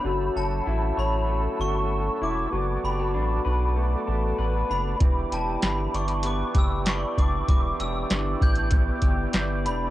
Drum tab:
HH |----------------|----------------|x-x-x-xxx-x-x-x-|x-x-x-xxx-x-x-x-|
SD |----------------|----------------|----o-------o---|----o-------o---|
BD |----------------|----------------|o---------o---o-|o-----o-o-o-----|